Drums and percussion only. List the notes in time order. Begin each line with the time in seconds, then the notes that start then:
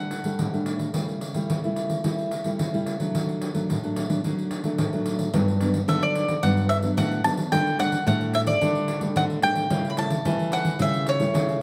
0.11 pandeiro
0.24 pandeiro
0.39 pandeiro
0.54 pandeiro
0.66 pandeiro
0.79 pandeiro
0.94 pandeiro
1.08 pandeiro
1.21 pandeiro
1.34 pandeiro
1.50 pandeiro
1.64 pandeiro
1.76 pandeiro
1.90 pandeiro
2.04 pandeiro
2.19 pandeiro
2.31 pandeiro
2.44 pandeiro
2.59 pandeiro
2.74 pandeiro
2.86 pandeiro
3.00 pandeiro
3.15 pandeiro
3.29 pandeiro
3.42 pandeiro
3.55 pandeiro
3.70 pandeiro
3.84 pandeiro
3.96 pandeiro
4.10 pandeiro
4.24 pandeiro
4.39 pandeiro
4.51 pandeiro
4.64 pandeiro
4.78 pandeiro
4.93 pandeiro
5.06 pandeiro
5.19 pandeiro
5.34 pandeiro
5.48 pandeiro
5.61 pandeiro
5.74 pandeiro
5.88 pandeiro
6.03 pandeiro
6.15 pandeiro
6.28 pandeiro
6.43 pandeiro
6.57 pandeiro
6.70 pandeiro
6.82 pandeiro
6.97 pandeiro
7.12 pandeiro
7.24 pandeiro
7.37 pandeiro
7.52 pandeiro
7.67 pandeiro
7.79 pandeiro
7.92 pandeiro
8.07 pandeiro
8.21 pandeiro
8.34 pandeiro
8.47 pandeiro
8.62 pandeiro
8.75 pandeiro
8.88 pandeiro
9.01 pandeiro
9.16 pandeiro
9.30 pandeiro
9.42 pandeiro
9.55 pandeiro
9.70 pandeiro
9.85 pandeiro
9.97 pandeiro
10.10 pandeiro
10.25 pandeiro
10.39 pandeiro
10.52 pandeiro
10.65 pandeiro
10.79 pandeiro
10.94 pandeiro
11.07 pandeiro
11.20 pandeiro
11.35 pandeiro
11.49 pandeiro